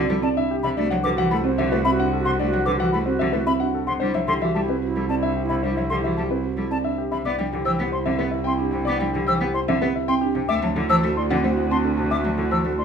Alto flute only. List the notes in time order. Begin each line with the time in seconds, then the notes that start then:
0.07 E4
0.35 E4
0.77 F#4
1.05 F#4
1.33 F#4
1.61 F#4
1.90 F#4
2.19 F#4
2.46 F#4
2.75 F#4
3.04 F#4
3.32 F#4
3.60 F#4
4.02 E4
4.30 E4
4.58 E4
4.85 E4
5.14 E4
5.42 E4
5.70 E4
5.98 E4
6.27 E4
6.54 E4
6.82 E4
7.24 E4
10.49 F#4